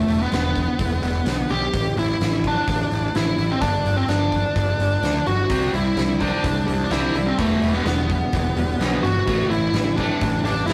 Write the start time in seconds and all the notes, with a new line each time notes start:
Already playing: A3
0.08 E1, open hi-hat
0.22 B3
0.32 E1 B3, snare, open hi-hat
0.56 kick, open hi-hat
0.79 E1, kick, open hi-hat
1.02 E1, open hi-hat
1.26 B1, snare, open hi-hat
1.49 B1 G4, open hi-hat
1.73 A1, kick, open hi-hat
1.96 A1 E4, open hi-hat
2.20 A1, snare, open hi-hat
2.44 D4, kick, open hi-hat
2.67 A1, kick, open hi-hat
2.91 A1, open hi-hat
3.15 A1 E4, snare, open hi-hat
3.38 A1, open hi-hat
3.51 C4
3.61 G1 D4, kick, open hi-hat
3.85 G1, open hi-hat
3.97 C4
4.08 G1 D4, snare, open hi-hat
4.32 kick, open hi-hat
4.56 G1, kick, open hi-hat
4.79 G1, open hi-hat
5.03 D2, snare, open hi-hat
5.27 G1 F#4, open hi-hat
5.49 C2 C3 G3 C4, kick, open hi-hat
5.72 C2 C3 E3 G3 E4, open hi-hat
5.96 C2 C3 G3, snare, open hi-hat
6.19 C3 G3 C4 D4, kick, open hi-hat
6.44 C2 C3 E3 G3, kick, open hi-hat
6.66 C2 C3 G3, open hi-hat
6.84 D4
6.90 C2 C3 E3 G3 C4 E4, snare, open hi-hat
7.13 C2 C3 G3 D4, open hi-hat
7.26 C4
7.37 E1 E2 B2 E3 A3, kick, open hi-hat
7.61 E1 E2 B2 E3, open hi-hat
7.74 B3
7.85 E1 E2 B2 G3 B3, snare, open hi-hat
8.09 E2 B2 B3, kick, open hi-hat
8.33 E1 E2 B2 E3, kick, open hi-hat
8.56 E1 E2 B2 G3, open hi-hat
8.79 B1 E2 B2 E3, snare, open hi-hat
9.02 G1 E2 B2 B3 F#4, open hi-hat
9.27 A1 A2 E3 A3, kick, open hi-hat
9.50 A1 A2 E3 E4, open hi-hat
9.73 A1 A2 E3 G3, snare, open hi-hat
9.97 A2 E3 A3 C4 D4, kick, open hi-hat
10.21 A1 A2 E3, kick, open hi-hat
10.44 A1 A2 E3 G3 D4, open hi-hat
10.67 A1 A2 E3 E4, snare, open hi-hat